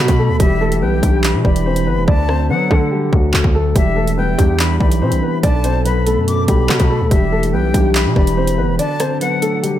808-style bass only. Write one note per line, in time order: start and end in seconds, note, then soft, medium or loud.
0.08 0.31 B2 loud
0.29 0.39 D2 loud
0.40 0.83 E1 loud
0.82 1.02 B1 loud
1.03 1.36 B1 loud
1.34 1.44 B2 loud
1.45 1.88 E1 loud
1.87 1.99 G1 loud
1.97 2.07 E1 loud
2.08 2.51 D2 loud
2.50 2.70 F#3 loud
2.71 3.11 D3 loud
3.13 3.33 D2 loud
3.34 3.44 D2 loud
3.44 3.74 D2 loud
3.76 4.36 E1 loud
4.39 4.79 E2 loud
4.80 5.03 B1 loud
5.01 5.13 B2 loud
5.12 5.22 B1 loud
5.43 6.18 B1 loud
6.17 6.47 F#2 loud
6.48 6.68 B1 loud
6.69 6.79 B2 loud
6.80 7.02 B2 loud
7.01 7.11 D2 loud
7.11 7.55 E1 loud
7.53 7.73 B1 loud
7.74 8.07 B1 loud
8.06 8.16 B2 loud
8.16 8.60 E1 loud
8.58 8.70 G1 loud
8.69 8.79 E1 loud